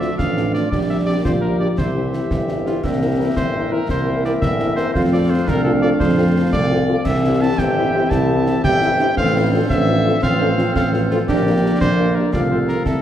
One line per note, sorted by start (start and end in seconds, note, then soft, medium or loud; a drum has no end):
0.00 0.11 D2 medium
0.00 0.68 F3 medium
0.00 0.69 A3 medium
0.00 0.08 A3 medium
0.00 0.09 D4 medium
0.00 0.18 F4 medium
0.00 0.68 F4 medium
0.00 0.09 F4 medium
0.00 0.68 D5 medium
0.00 0.17 E5 medium
0.00 snare medium
0.18 0.63 A1 medium
0.18 0.69 D4 medium
0.18 0.51 F5 loud
0.18 concert bass drum medium
0.18 snare medium
0.36 0.43 A3 medium
0.36 0.43 D4 medium
0.36 0.43 F4 medium
0.36 snare soft
0.54 0.61 A3 medium
0.54 0.61 D4 medium
0.54 0.61 F4 medium
0.54 0.71 D5 medium
0.54 snare medium
0.70 1.16 A#1 medium
0.70 1.73 G3 medium
0.70 1.73 A#3 medium
0.70 1.20 D4 medium
0.70 2.79 G4 medium
0.70 0.79 D5 medium
0.70 1.74 D5 medium
0.70 concert bass drum medium
0.70 snare medium
0.88 0.95 G3 medium
0.88 0.95 D4 medium
0.88 0.95 G4 medium
0.88 0.97 E5 medium
1.06 1.13 G3 medium
1.06 1.13 D4 medium
1.06 1.13 G4 medium
1.06 1.23 D5 loud
1.24 1.69 A#1 medium
1.24 1.80 F4 medium
1.24 1.32 C5 medium
1.24 concert bass drum medium
1.24 snare medium
1.41 1.48 G3 medium
1.41 1.48 D4 medium
1.41 1.48 G4 medium
1.41 1.58 A#4 medium
1.60 1.66 G3 medium
1.60 1.66 D4 medium
1.60 1.66 G4 medium
1.60 1.68 D5 medium
1.77 2.22 C2 medium
1.77 2.82 E3 medium
1.77 2.83 C4 medium
1.77 2.85 E4 medium
1.77 2.44 C5 medium
1.77 2.82 E5 medium
1.77 concert bass drum medium
1.77 snare medium
1.95 2.01 C4 medium
1.95 2.01 E4 medium
1.95 2.01 G4 medium
2.12 2.19 C4 medium
2.12 2.19 E4 medium
2.12 2.19 G4 medium
2.12 snare medium
2.31 2.75 G1 medium
2.31 concert bass drum medium
2.31 snare medium
2.48 2.54 C4 medium
2.48 2.54 E4 medium
2.48 2.54 G4 medium
2.48 snare medium
2.65 2.72 C4 medium
2.65 2.72 E4 medium
2.65 2.85 F4 medium
2.65 2.72 G4 medium
2.65 snare soft
2.83 3.28 C2 medium
2.83 4.91 E3 medium
2.83 4.90 A#3 medium
2.83 3.03 D4 medium
2.83 3.36 G4 medium
2.83 4.95 A#4 medium
2.83 4.90 E5 medium
2.83 concert bass drum medium
2.83 snare medium
2.83 crash soft
3.01 3.07 C4 medium
3.01 3.20 C4 medium
3.01 3.07 E4 medium
3.01 3.07 A#4 medium
3.18 3.25 C4 medium
3.18 3.88 E4 medium
3.18 3.25 E4 medium
3.18 3.25 A#4 medium
3.36 3.76 G1 medium
3.36 3.73 C5 loud
3.36 concert bass drum medium
3.36 snare medium
3.54 3.61 C4 medium
3.54 3.61 E4 medium
3.54 3.60 A#4 medium
3.71 3.78 C4 medium
3.71 3.78 E4 medium
3.71 3.78 A#4 medium
3.71 3.89 A#4 loud
3.89 4.33 C2 medium
3.89 4.90 E4 medium
3.89 4.22 C5 medium
3.89 concert bass drum medium
3.89 snare medium
4.07 4.13 C4 medium
4.07 4.13 E4 medium
4.07 4.13 A#4 medium
4.24 4.31 C4 medium
4.24 4.31 E4 medium
4.24 4.31 A#4 medium
4.24 4.33 D5 medium
4.24 snare medium
4.41 4.86 G1 medium
4.41 4.74 E5 loud
4.41 concert bass drum medium
4.41 snare medium
4.59 4.66 C4 medium
4.59 4.66 E4 medium
4.59 4.66 A#4 medium
4.59 snare medium
4.76 4.84 C4 medium
4.76 4.84 E4 medium
4.76 4.84 A#4 medium
4.76 4.93 C5 loud
4.76 snare medium
4.94 5.38 F2 medium
4.94 6.89 F3 medium
4.94 6.89 A3 medium
4.94 5.44 F4 medium
4.94 6.90 A4 medium
4.94 5.02 C5 loud
4.94 6.90 F5 medium
4.94 concert bass drum medium
4.94 snare medium
5.12 5.19 C4 medium
5.12 5.19 F4 medium
5.12 5.19 A4 medium
5.12 5.31 D5 loud
5.30 5.36 C4 medium
5.30 5.36 F4 medium
5.30 5.36 A4 medium
5.30 5.50 C5 loud
5.47 5.91 C2 medium
5.47 6.73 D4 loud
5.47 5.64 A#4 loud
5.47 concert bass drum medium
5.47 snare medium
5.64 5.71 C4 medium
5.64 5.71 F4 medium
5.64 5.72 A4 loud
5.64 5.71 A4 medium
5.82 5.89 C4 medium
5.82 5.89 F4 medium
5.82 5.88 A4 medium
5.82 5.90 D5 loud
5.99 6.44 F2 medium
5.99 6.49 C5 loud
5.99 concert bass drum medium
5.99 snare medium
6.17 6.24 C4 medium
6.17 6.23 F4 medium
6.17 6.24 A4 medium
6.35 6.41 C4 medium
6.35 6.41 F4 medium
6.35 6.41 A4 medium
6.52 6.97 C2 medium
6.52 7.06 D5 loud
6.52 concert bass drum medium
6.52 snare medium
6.71 6.77 C4 medium
6.71 6.77 F4 medium
6.71 6.77 A4 medium
6.88 6.95 C4 medium
6.88 6.95 F4 medium
6.88 6.94 A4 medium
7.05 7.49 C2 medium
7.05 9.13 E3 medium
7.05 9.13 C4 medium
7.05 8.14 C4 medium
7.05 7.55 G4 medium
7.05 7.43 E5 loud
7.05 7.55 E5 medium
7.05 concert bass drum medium
7.05 snare medium
7.05 crash soft
7.24 7.30 C4 medium
7.24 7.30 E4 medium
7.24 7.30 G4 medium
7.41 7.48 C4 medium
7.41 7.47 E4 medium
7.41 7.47 G4 medium
7.41 7.60 A5 loud
7.58 8.02 G1 medium
7.58 8.60 G4 medium
7.58 8.60 E5 medium
7.58 8.11 G5 loud
7.58 concert bass drum medium
7.58 snare medium
7.77 7.83 C4 medium
7.77 7.83 E4 medium
7.77 7.83 G4 medium
7.95 8.01 C4 medium
7.95 8.01 E4 medium
7.95 8.01 G4 medium
8.10 8.55 C2 loud
8.10 8.63 E4 loud
8.10 8.63 A5 loud
8.10 concert bass drum medium
8.10 snare medium
8.30 8.36 C4 medium
8.30 8.36 E4 medium
8.30 8.36 G4 medium
8.46 8.53 C4 medium
8.46 8.53 E4 medium
8.46 8.53 G4 medium
8.46 snare medium
8.63 9.08 G1 medium
8.63 9.13 G4 medium
8.63 8.71 G4 loud
8.63 9.13 E5 medium
8.63 9.13 G5 loud
8.63 concert bass drum medium
8.63 snare medium
8.81 8.88 C4 medium
8.81 8.89 E4 medium
8.81 8.88 E4 medium
8.81 8.88 G4 medium
8.81 snare medium
8.99 9.06 C4 medium
8.99 9.07 D4 medium
8.99 9.05 E4 medium
8.99 9.05 G4 medium
8.99 snare medium
9.15 9.61 A1 medium
9.15 11.29 F3 medium
9.15 9.35 C4 medium
9.15 11.24 C4 medium
9.15 10.21 A4 medium
9.15 10.19 C5 medium
9.15 9.49 F5 loud
9.15 concert bass drum medium
9.15 snare medium
9.33 9.41 C4 medium
9.33 9.53 E4 medium
9.33 9.40 F4 medium
9.33 9.40 A4 medium
9.51 9.59 C4 medium
9.51 10.23 D4 medium
9.51 9.59 F4 medium
9.51 9.59 A4 medium
9.70 10.14 A1 loud
9.70 10.19 E5 loud
9.70 concert bass drum medium
9.70 snare medium
9.88 9.94 C4 medium
9.88 9.94 F4 medium
9.88 9.95 A4 medium
10.05 10.12 C4 medium
10.05 10.12 F4 medium
10.05 10.12 A4 medium
10.21 10.67 A1 medium
10.21 10.39 C4 medium
10.21 10.71 A4 medium
10.21 10.72 C5 medium
10.21 10.71 F5 loud
10.21 concert bass drum medium
10.21 snare medium
10.40 10.47 C4 medium
10.40 10.48 D4 medium
10.40 10.47 F4 medium
10.40 10.46 A4 medium
10.57 11.24 C4 medium
10.57 10.65 C4 medium
10.57 10.65 F4 medium
10.57 10.65 A4 medium
10.57 snare medium
10.75 11.19 A1 medium
10.75 11.24 A4 medium
10.75 11.24 C5 medium
10.75 10.92 F5 loud
10.75 concert bass drum medium
10.75 snare medium
10.93 10.99 C4 medium
10.93 10.99 F4 medium
10.93 10.99 A4 medium
10.93 snare soft
11.11 11.18 C4 medium
11.11 11.19 F4 loud
11.11 11.18 F4 medium
11.11 11.18 A4 medium
11.11 snare medium
11.28 11.72 A#1 loud
11.28 12.30 D3 medium
11.28 12.31 A#3 medium
11.28 11.46 D4 loud
11.28 11.77 G4 loud
11.28 12.33 A#4 medium
11.28 12.29 D5 medium
11.28 concert bass drum medium
11.28 snare medium
11.28 crash soft
11.44 11.52 A#3 medium
11.44 11.62 C4 medium
11.44 11.52 D4 medium
11.44 11.52 G4 medium
11.62 11.70 A#3 medium
11.62 12.29 D4 medium
11.62 11.70 D4 medium
11.62 11.70 G4 medium
11.81 12.20 A#1 medium
11.81 12.17 C5 loud
11.81 concert bass drum medium
11.81 snare medium
11.98 12.05 A#3 medium
11.98 12.05 D4 medium
11.98 12.05 G4 medium
12.15 12.23 A#3 medium
12.15 12.23 D4 medium
12.15 12.23 G4 medium
12.15 12.32 A#4 medium
12.33 12.77 C2 medium
12.33 12.86 F3 medium
12.33 12.86 A3 medium
12.33 12.87 F4 medium
12.33 12.86 A4 medium
12.33 12.41 D5 loud
12.33 12.82 F5 medium
12.33 concert bass drum medium
12.33 snare medium
12.51 12.57 A3 medium
12.51 12.57 C4 medium
12.51 12.57 F4 medium
12.51 12.59 C5 medium
12.68 12.75 A3 medium
12.68 12.75 C4 medium
12.68 12.75 F4 medium
12.68 12.84 A#4 medium
12.68 snare soft
12.85 13.02 C2 medium
12.85 13.02 E3 medium
12.85 13.02 A#3 medium
12.85 13.02 E4 medium
12.85 13.02 A4 loud
12.85 13.02 A#4 medium
12.85 13.02 E5 medium
12.85 concert bass drum medium
12.85 snare medium